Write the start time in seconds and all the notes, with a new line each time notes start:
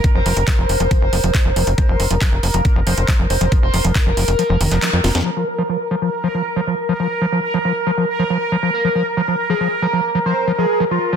Already playing: A#4
0.04 kick, closed hi-hat
0.15 F1 F3 C5
0.26 F1 F3, open hi-hat
0.37 F1, closed hi-hat
0.48 F3 C5, kick, clap, closed hi-hat
0.58 F1 F3
0.69 F1, open hi-hat
0.80 F1 F3, closed hi-hat
0.91 F3, kick, closed hi-hat
1.02 F1
1.13 F1 F3, open hi-hat
1.24 F1 F3, closed hi-hat
1.35 kick, clap, closed hi-hat
1.45 F1 F3
1.56 F1 F3, open hi-hat
1.67 F1, closed hi-hat
1.78 F3 C5, kick, closed hi-hat
1.89 F1 F3
2.00 F1, open hi-hat
2.11 F1 F3, closed hi-hat
2.21 F3, kick, clap, closed hi-hat
2.32 F1
2.43 F1 F3, open hi-hat
2.54 F1 F3 A#4, closed hi-hat
2.65 kick, closed hi-hat
2.76 F1 F3
2.87 F1 F3 C5, open hi-hat
2.98 F1, closed hi-hat
3.08 F3, kick, clap, closed hi-hat
3.19 F1 F3
3.30 F1 C5, open hi-hat
3.41 F1 F3, closed hi-hat
3.52 F3, kick, closed hi-hat
3.63 F1 C5
3.74 F1 F3, open hi-hat
3.85 F1 F3, closed hi-hat
3.95 A#4, kick, clap, closed hi-hat
4.06 F1 F3
4.17 F1 F3, open hi-hat
4.28 F1, closed hi-hat
4.39 F3, closed hi-hat
4.50 F1 F3
4.61 F1 D#3, open hi-hat
4.71 F1 F3, clap, closed hi-hat
4.82 F3, clap, closed hi-hat
4.93 F2 F3
5.04 F1 F4, snare, open hi-hat
5.15 F2 F3, snare, closed hi-hat
5.26 F3 A#4
5.37 F3
5.58 F3
5.69 F3
5.91 F3
6.02 F3
6.24 F3
6.35 F3
6.56 F3
6.67 F3
6.89 F3
7.00 F3
7.21 F3
7.32 F3
7.54 F3
7.65 F3
7.87 F3
7.98 F3
8.19 F3
8.30 F3
8.52 F3
8.63 F3
8.74 A#4
8.84 F3
8.95 F3
9.17 F3
9.28 F3
9.50 F3 G#4
9.61 F3
9.82 F3 A#4
9.93 F3
10.15 F3
10.26 F3 C5
10.47 F3
10.58 F3 G#4
10.80 F3
10.91 F3 F4
11.13 F3